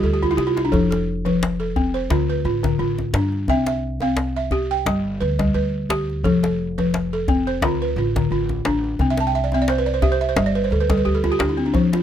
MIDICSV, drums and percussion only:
0, 0, Header, 1, 2, 480
1, 0, Start_track
1, 0, Tempo, 688863
1, 502, Time_signature, 4, 2, 24, 8
1, 8381, End_track
2, 0, Start_track
2, 0, Title_t, "Djembe"
2, 164, Note_on_c, 9, 64, 37
2, 234, Note_off_c, 9, 64, 0
2, 266, Note_on_c, 9, 62, 45
2, 335, Note_off_c, 9, 62, 0
2, 399, Note_on_c, 9, 62, 47
2, 469, Note_off_c, 9, 62, 0
2, 512, Note_on_c, 9, 64, 60
2, 582, Note_off_c, 9, 64, 0
2, 642, Note_on_c, 9, 62, 52
2, 712, Note_off_c, 9, 62, 0
2, 879, Note_on_c, 9, 62, 21
2, 879, Note_on_c, 9, 63, 43
2, 949, Note_off_c, 9, 62, 0
2, 949, Note_off_c, 9, 63, 0
2, 995, Note_on_c, 9, 62, 66
2, 1064, Note_off_c, 9, 62, 0
2, 1228, Note_on_c, 9, 64, 58
2, 1298, Note_off_c, 9, 64, 0
2, 1362, Note_on_c, 9, 62, 22
2, 1432, Note_off_c, 9, 62, 0
2, 1466, Note_on_c, 9, 62, 57
2, 1466, Note_on_c, 9, 63, 62
2, 1535, Note_off_c, 9, 62, 0
2, 1535, Note_off_c, 9, 63, 0
2, 1840, Note_on_c, 9, 62, 55
2, 1840, Note_on_c, 9, 64, 54
2, 1910, Note_off_c, 9, 62, 0
2, 1910, Note_off_c, 9, 64, 0
2, 2080, Note_on_c, 9, 63, 58
2, 2149, Note_off_c, 9, 63, 0
2, 2186, Note_on_c, 9, 62, 65
2, 2255, Note_off_c, 9, 62, 0
2, 2314, Note_on_c, 9, 62, 19
2, 2384, Note_off_c, 9, 62, 0
2, 2425, Note_on_c, 9, 64, 59
2, 2495, Note_off_c, 9, 64, 0
2, 2554, Note_on_c, 9, 62, 57
2, 2623, Note_off_c, 9, 62, 0
2, 2790, Note_on_c, 9, 62, 20
2, 2790, Note_on_c, 9, 63, 53
2, 2860, Note_off_c, 9, 62, 0
2, 2860, Note_off_c, 9, 63, 0
2, 2903, Note_on_c, 9, 62, 64
2, 2972, Note_off_c, 9, 62, 0
2, 3142, Note_on_c, 9, 64, 60
2, 3212, Note_off_c, 9, 64, 0
2, 3282, Note_on_c, 9, 62, 21
2, 3352, Note_off_c, 9, 62, 0
2, 3389, Note_on_c, 9, 62, 67
2, 3389, Note_on_c, 9, 63, 63
2, 3458, Note_off_c, 9, 62, 0
2, 3458, Note_off_c, 9, 63, 0
2, 3759, Note_on_c, 9, 62, 51
2, 3759, Note_on_c, 9, 64, 50
2, 3828, Note_off_c, 9, 62, 0
2, 3828, Note_off_c, 9, 64, 0
2, 4113, Note_on_c, 9, 62, 73
2, 4182, Note_off_c, 9, 62, 0
2, 4248, Note_on_c, 9, 62, 20
2, 4317, Note_off_c, 9, 62, 0
2, 4357, Note_on_c, 9, 64, 60
2, 4427, Note_off_c, 9, 64, 0
2, 4485, Note_on_c, 9, 62, 59
2, 4555, Note_off_c, 9, 62, 0
2, 4728, Note_on_c, 9, 62, 21
2, 4728, Note_on_c, 9, 63, 52
2, 4798, Note_off_c, 9, 62, 0
2, 4798, Note_off_c, 9, 63, 0
2, 4836, Note_on_c, 9, 62, 59
2, 4905, Note_off_c, 9, 62, 0
2, 5073, Note_on_c, 9, 64, 70
2, 5143, Note_off_c, 9, 64, 0
2, 5207, Note_on_c, 9, 62, 20
2, 5277, Note_off_c, 9, 62, 0
2, 5312, Note_on_c, 9, 62, 73
2, 5312, Note_on_c, 9, 63, 73
2, 5382, Note_off_c, 9, 62, 0
2, 5382, Note_off_c, 9, 63, 0
2, 5686, Note_on_c, 9, 62, 52
2, 5686, Note_on_c, 9, 64, 52
2, 5756, Note_off_c, 9, 62, 0
2, 5756, Note_off_c, 9, 64, 0
2, 5918, Note_on_c, 9, 63, 54
2, 5988, Note_off_c, 9, 63, 0
2, 6027, Note_on_c, 9, 62, 69
2, 6097, Note_off_c, 9, 62, 0
2, 6157, Note_on_c, 9, 62, 17
2, 6227, Note_off_c, 9, 62, 0
2, 6266, Note_on_c, 9, 62, 20
2, 6266, Note_on_c, 9, 64, 64
2, 6336, Note_off_c, 9, 62, 0
2, 6336, Note_off_c, 9, 64, 0
2, 6392, Note_on_c, 9, 62, 58
2, 6462, Note_off_c, 9, 62, 0
2, 6502, Note_on_c, 9, 62, 20
2, 6572, Note_off_c, 9, 62, 0
2, 6632, Note_on_c, 9, 63, 53
2, 6702, Note_off_c, 9, 63, 0
2, 6744, Note_on_c, 9, 62, 62
2, 6814, Note_off_c, 9, 62, 0
2, 6984, Note_on_c, 9, 64, 68
2, 7054, Note_off_c, 9, 64, 0
2, 7222, Note_on_c, 9, 62, 70
2, 7222, Note_on_c, 9, 63, 74
2, 7292, Note_off_c, 9, 62, 0
2, 7292, Note_off_c, 9, 63, 0
2, 7353, Note_on_c, 9, 62, 20
2, 7423, Note_off_c, 9, 62, 0
2, 7460, Note_on_c, 9, 62, 26
2, 7529, Note_off_c, 9, 62, 0
2, 7593, Note_on_c, 9, 62, 60
2, 7593, Note_on_c, 9, 64, 58
2, 7662, Note_off_c, 9, 62, 0
2, 7662, Note_off_c, 9, 64, 0
2, 7831, Note_on_c, 9, 62, 26
2, 7831, Note_on_c, 9, 63, 65
2, 7901, Note_off_c, 9, 62, 0
2, 7901, Note_off_c, 9, 63, 0
2, 7943, Note_on_c, 9, 62, 78
2, 8013, Note_off_c, 9, 62, 0
2, 8184, Note_on_c, 9, 64, 73
2, 8253, Note_off_c, 9, 64, 0
2, 8315, Note_on_c, 9, 62, 61
2, 8381, Note_off_c, 9, 62, 0
2, 8381, End_track
0, 0, End_of_file